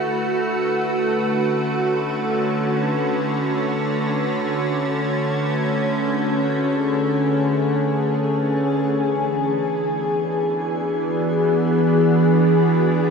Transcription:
Already playing: A3 E4 F#4 B4
0.06 D3
0.61 C#4
5.74 G#4
8.95 E3
9.36 B3
9.57 D4
10.21 F#4

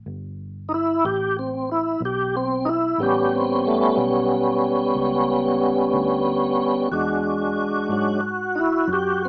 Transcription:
0.06 G1
0.68 D#4
0.74 E4
1.05 A1 G4
1.39 C4
1.71 E4
2.00 B1
2.05 G4
2.37 C4
2.65 D#4 E4
2.98 A1 G3 B3 C#4
3.03 G4
3.35 C4
3.67 A3
3.97 B1
4.95 C#2
5.93 D2
6.91 E2 G#3 D4 F#4
7.89 G#2 F#3 G#3 D4
8.55 D#4
8.59 E4
8.88 F#2
8.93 G4
9.25 C4

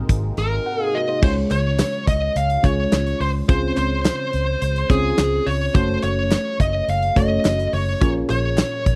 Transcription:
Already playing: G#2 C3 G#3 A#3 C4 D#4 F#4 G#4 A#4
0.09 G#1, kick, closed hi-hat
0.37 G#1 A#4, closed hi-hat
0.66 A#4 F#5
0.80 G#4 F5
0.94 F#4 D#5
1.08 D#4 C5
1.22 C#2 C#3 G#3 C#4 F4 G#4 C5 C#5, kick, crash
1.51 C#2 C#5, clap, closed hi-hat
1.79 snare, clap, closed hi-hat, tambourine
2.07 C#2 D#5, kick, closed hi-hat
2.36 C#2 F5, closed hi-hat
2.50 closed hi-hat
2.63 C#2 G#3 C#4 F4 G#4 C#5, kick, closed hi-hat
2.92 C#2, snare, clap, closed hi-hat, tambourine
3.07 closed hi-hat
3.20 C#2 C5, open hi-hat
3.48 C#2 C#3 C4 C#4 F4 G#4 C5, kick, closed hi-hat
3.77 C#2 C5, clap, closed hi-hat
4.05 snare, clap, closed hi-hat, tambourine
4.33 C#2, closed hi-hat
4.62 C#2, closed hi-hat
4.76 closed hi-hat
4.90 C#2 C4 C#4 F4 G#4 C5, kick, closed hi-hat
5.18 C#2, snare, clap, closed hi-hat, tambourine
5.46 C#2 C#5, open hi-hat
5.74 F#1 A3 C#4 F#4 A4 C5 C#5, kick, closed hi-hat
6.03 F#1 C#5, clap, closed hi-hat
6.31 snare, clap, closed hi-hat, tambourine
6.60 F#1 D#5, kick, closed hi-hat
6.88 F#1 F5, closed hi-hat
7.03 closed hi-hat
7.16 F#1 A3 C#4 F#4 A4 C#5 D#5, kick, closed hi-hat
7.45 F#1, snare, clap, closed hi-hat, tambourine
7.59 closed hi-hat
7.73 F#1 C#5, open hi-hat
8.01 A#1 A#2 C#4 F4 G#4 A#4 C#5, kick, closed hi-hat
8.29 A#1 C#5, clap, closed hi-hat
8.57 snare, clap, closed hi-hat, tambourine
8.86 A#1, kick, closed hi-hat

